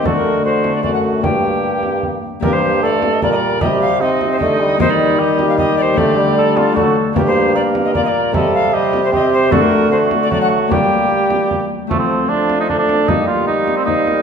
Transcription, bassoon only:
\new Staff \with { instrumentName = "Bassoon" } { \clef bass \time 3/4 \key g \minor \tempo 4 = 152 d2 fis,4 | g,2~ g,8 r8 | g,2 bes,4 | c2 d4 |
ees2. | d2 d8 r8 | g,2 bes,4 | c2. |
d2 fis4 | g2~ g8 r8 | f2. | g2. | }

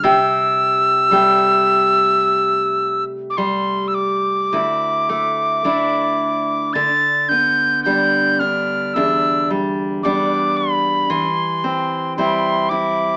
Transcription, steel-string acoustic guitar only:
\new Staff \with { instrumentName = "Steel-string acoustic guitar" } { \time 4/4 \key c \major \tempo 4 = 55 <c g'>4 <g a g'>2 g4 | <d, e'>8 a8 <a d' e'>4 d8 b8 <g b d'>8 d'8 | <e, d'>8 g8 <g b d'>4 e8 c'8 <g c' e'>8 e'8 | }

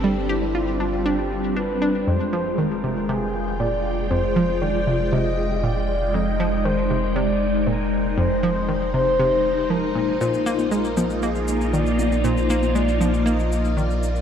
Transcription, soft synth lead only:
\new Staff \with { instrumentName = "Soft synth lead" } { \time 4/4 \key g \mixolydian \tempo 4 = 118 g'8 e'4 f'8 g'4 b'4 | \key f \dorian c''4 bes'4 aes'4 d''4 | c''4 d''4 ees''4 d''4 | ees''4 c''4 d''4 bes'4 |
c''4. c''4. bes'4 | c''4 bes'4 aes'4 d''4 | c''4 d''4 ees''4 d''4 | }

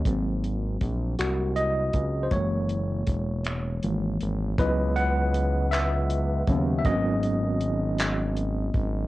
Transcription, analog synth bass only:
\new Staff \with { instrumentName = "Analog synth bass" } { \clef bass \time 6/8 \key cis \dorian \tempo 4. = 53 gis,,4 ais,,8 bis,,4 cis,8 | fis,,4 e,,4 gis,,8 gis,,8 | cis,2~ cis,8 dis,8 | gis,,2~ gis,,8 gis,,8 | }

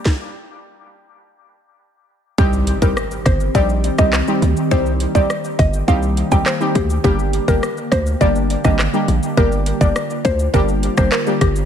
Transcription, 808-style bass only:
\new Staff \with { instrumentName = "808-style bass" } { \clef bass \time 4/4 \key c \minor \tempo 4 = 103 r1 | c,8. c,16 r8 g,,8 bes,,8. c,8 r16 d,16 r16 | c,8. c,16 r8 g,,8 c,8. c,16 r8 d,8 | g,,8. g,,16 r8 d,8 g,,8. aes,,8 r16 bes,,16 r16 |
g,,8. g,,16 r8 d,8 g,,8. g,,16 r8 g,,8 | }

